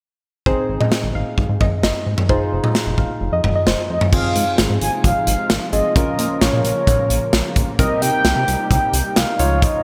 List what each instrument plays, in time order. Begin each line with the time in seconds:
0.46 analog synth bass G#1, synth keys C4 D#4 G#4, synth pluck C5, kick
0.69 analog synth bass G#1
0.80 synth pluck D#5, mid tom
0.92 snare
1.03 analog synth bass G#1
1.15 analog synth bass G#1, synth pluck F5
1.38 analog synth bass G#1, kick
1.49 analog synth bass G#2
1.61 analog synth bass G#1, synth pluck D#5, kick, mid tom
1.83 analog synth bass G#1, synth pluck D#5, snare
2.06 analog synth bass G#2
2.18 mid tom
2.29 analog synth bass F1, synth keys D#4 F4 G#4, synth pluck C5, kick
2.52 analog synth bass F1
2.64 synth pluck D#5, mid tom
2.75 snare
2.87 analog synth bass F1
2.98 analog synth bass F1, synth pluck F5, kick
3.21 analog synth bass F1
3.32 analog synth bass F2, synth pluck D#5
3.44 analog synth bass F1, mid tom
3.55 synth pluck D#5
3.67 analog synth bass F1, synth pluck C5, snare
3.90 analog synth bass F2, soft synth lead D#5
4.01 mid tom
4.13 analog synth bass G#1, analog synth pad C3 F3 G#3 D#4 F4, synth keys C4 F4 G#4, soft synth lead F5, kick, crash
4.36 analog synth bass G#2, closed hi-hat
4.58 analog synth bass G#1, snare, closed hi-hat
4.70 analog synth bass G#2
4.81 analog synth bass G#1, soft synth lead G#5, closed hi-hat
5.04 analog synth bass G#1, soft synth lead F5, kick, closed hi-hat
5.27 analog synth bass G#1, closed hi-hat
5.50 analog synth bass G#1, snare, closed hi-hat
5.73 analog synth bass G#1, synth keys C4 F4 G#4, soft synth lead D#5, closed hi-hat
5.96 analog synth bass A#1, analog synth pad C#3 A#3 A#4, synth keys C#4 F4 A#4, soft synth lead D#5, kick, closed hi-hat
6.19 analog synth bass A#2, closed hi-hat
6.41 analog synth bass A#1, soft synth lead C#5, snare, closed hi-hat
6.53 analog synth bass A#2
6.64 analog synth bass A#1, soft synth lead C#5, closed hi-hat
6.87 analog synth bass A#1, kick, closed hi-hat, mid tom
7.10 analog synth bass A#1, closed hi-hat
7.33 analog synth bass A#1, snare, closed hi-hat
7.56 analog synth bass A#1, kick, closed hi-hat
7.79 analog synth bass C2, analog synth pad C3 G3 D#4 G4, synth keys C4 D#4 A#4, soft synth lead D#5, kick, closed hi-hat
8.02 analog synth bass C3, soft synth lead G5, closed hi-hat
8.25 analog synth bass C2, snare, closed hi-hat
8.36 analog synth bass C3
8.48 analog synth bass C2, closed hi-hat
8.71 analog synth bass C2, soft synth lead G5, kick, closed hi-hat
8.93 analog synth bass C2, closed hi-hat
9.16 analog synth bass C2, soft synth lead F5, snare, closed hi-hat
9.39 analog synth bass C#2, analog synth pad C#3 F3 G#3 F4, synth keys D#4 F4 C#5, closed hi-hat
9.62 soft synth lead D#5, kick, closed hi-hat